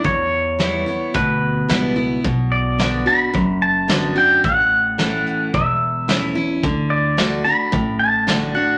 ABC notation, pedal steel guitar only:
X:1
M:4/4
L:1/8
Q:1/4=109
K:D
V:1 name="Pedal steel guitar"
c4 B3 z | z d2 b2 a2 g | f4 e3 z | z d2 b2 a2 f |]